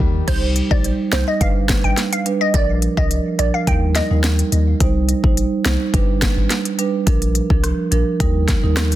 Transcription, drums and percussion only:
0.00 kick loud
0.28 kick loud
0.28 closed hi-hat medium
0.28 crash loud
0.56 closed hi-hat medium
0.71 kick loud
0.84 closed hi-hat medium
1.12 snare loud
1.12 closed hi-hat medium
1.41 kick loud
1.41 closed hi-hat medium
1.69 kick medium
1.69 snare loud
1.69 closed hi-hat medium
1.97 snare medium
1.97 closed hi-hat medium
2.13 closed hi-hat medium
2.26 closed hi-hat medium
2.54 kick loud
2.54 closed hi-hat medium
2.82 closed hi-hat medium
2.97 kick loud
3.11 closed hi-hat medium
3.39 closed hi-hat medium
3.67 kick loud
3.67 closed hi-hat medium
3.95 snare medium
3.95 closed hi-hat medium
4.24 snare loud
4.24 closed hi-hat medium
4.39 closed hi-hat medium
4.52 closed hi-hat medium
4.80 kick loud
4.80 closed hi-hat medium
5.09 closed hi-hat medium
5.24 kick loud
5.37 closed hi-hat medium
5.65 snare loud
5.65 closed hi-hat medium
5.94 kick loud
5.94 closed hi-hat medium
6.22 kick medium
6.22 snare loud
6.22 closed hi-hat medium
6.50 snare medium
6.50 closed hi-hat medium
6.65 closed hi-hat medium
6.79 closed hi-hat medium
7.07 kick loud
7.07 closed hi-hat medium
7.22 closed hi-hat medium
7.35 closed hi-hat medium
7.50 kick loud
7.64 cross-stick medium
7.64 closed hi-hat medium
7.92 closed hi-hat medium
8.20 kick loud
8.20 closed hi-hat medium
8.48 kick medium
8.48 snare medium
8.48 closed hi-hat medium
8.77 cross-stick loud
8.77 snare loud
8.77 closed hi-hat medium
8.92 closed hi-hat medium

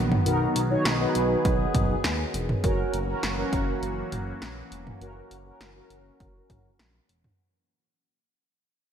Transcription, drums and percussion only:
0.12 mid tom medium
0.26 closed hi-hat medium
0.56 closed hi-hat medium
0.85 snare loud
0.85 closed hi-hat medium
1.15 closed hi-hat medium
1.45 kick medium
1.45 closed hi-hat medium
1.75 kick medium
1.75 closed hi-hat medium
1.75 mid tom medium
2.04 snare loud
2.04 closed hi-hat medium
2.34 closed hi-hat medium
2.49 mid tom medium
2.64 kick loud
2.64 closed hi-hat medium
2.94 closed hi-hat medium
3.23 snare loud
3.23 closed hi-hat medium
3.53 kick medium
3.53 closed hi-hat medium
3.83 closed hi-hat medium
4.12 closed hi-hat medium
4.12 mid tom medium
4.42 snare loud
4.42 closed hi-hat medium
4.72 closed hi-hat medium
4.87 mid tom medium
5.01 closed hi-hat medium
5.31 closed hi-hat medium
5.61 snare loud
5.61 closed hi-hat medium
5.90 closed hi-hat medium
6.20 kick medium
6.20 closed hi-hat medium
6.50 kick medium
6.50 closed hi-hat medium
6.50 mid tom medium
6.79 snare loud
6.79 closed hi-hat medium
7.09 closed hi-hat medium
7.24 mid tom medium

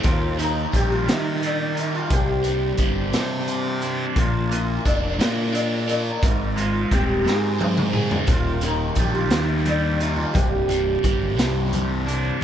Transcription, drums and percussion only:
0.03 kick loud
0.03 closed hi-hat medium
0.39 closed hi-hat medium
0.73 kick medium
0.73 closed hi-hat medium
1.09 snare loud
1.09 closed hi-hat medium
1.43 closed hi-hat medium
1.77 closed hi-hat medium
2.10 kick loud
2.10 closed hi-hat medium
2.44 closed hi-hat medium
2.77 kick medium
2.77 closed hi-hat medium
3.13 snare loud
3.13 closed hi-hat medium
3.48 closed hi-hat medium
3.82 closed hi-hat medium
4.16 kick medium
4.16 closed hi-hat medium
4.52 closed hi-hat medium
4.86 kick medium
4.86 closed hi-hat medium
5.21 snare medium
5.21 closed hi-hat medium
5.55 closed hi-hat medium
5.89 closed hi-hat medium
6.23 kick loud
6.23 closed hi-hat medium
6.58 closed hi-hat medium
6.91 kick medium
6.91 closed hi-hat medium
7.26 snare medium
7.61 high tom medium
7.77 mid tom medium
7.94 mid tom medium
8.11 floor tom medium
8.27 kick loud
8.27 closed hi-hat medium
8.27 high conga medium
8.61 closed hi-hat medium
8.61 low conga medium
8.95 kick medium
8.95 closed hi-hat medium
8.95 high conga medium
9.15 low conga medium
9.31 snare loud
9.31 closed hi-hat medium
9.65 closed hi-hat medium
9.65 high conga medium
9.65 low conga medium
10.00 closed hi-hat medium
10.17 low conga medium
10.34 kick loud
10.34 closed hi-hat medium
10.34 high conga medium
10.69 closed hi-hat medium
10.69 low conga loud
11.04 kick medium
11.04 closed hi-hat medium
11.04 high conga loud
11.23 low conga medium
11.39 snare loud
11.39 closed hi-hat medium
11.73 closed hi-hat medium
11.73 high conga medium
11.73 low conga medium
12.08 closed hi-hat medium
12.25 low conga medium

